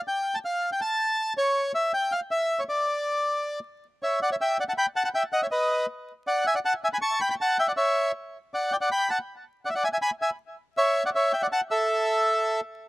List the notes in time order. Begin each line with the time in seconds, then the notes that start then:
0.08 G5
0.35 A5
0.45 F5
0.72 G5
0.81 A5
1.38 C#5
1.75 E5
1.94 G5
2.12 F5
2.31 E5
2.59 C#5
2.69 D5
4.03 C#5 E5
4.22 D5 F#5
4.32 C#5 E5
4.41 E5 G5
4.60 D5 F#5
4.69 F#5 A5
4.78 G5 B5
4.96 F#5 A5
5.04 F#5 A5
5.14 E5 G5
5.33 D#5 F#5
5.42 C#5 E5
5.51 B4 D#5
6.27 D5 F#5
6.47 E5 G#5
6.55 D5 F#5
6.65 F#5 A5
6.84 E5 G#5
6.93 G#5 B5
7.02 A5 C#6
7.20 G5 B5
7.30 G5 B5
7.41 F#5 A5
7.59 E5 G5
7.68 D5 F#5
7.77 C#5 E5
8.54 D5 F#5
8.72 D5 G5
8.81 D5 F#5
8.92 G5 B5
9.10 F#5 A5
9.65 D5 F#5
9.70 E5
9.75 D5 F#5
9.84 E5 G#5
9.93 E5 G#5
10.02 G#5 B5
10.22 E5 G#5
10.77 C#5 E5
11.06 D5 F#5
11.15 C#5 E5
11.33 E5 G5
11.42 D5 F#5
11.52 F#5 A5
11.71 A4 E5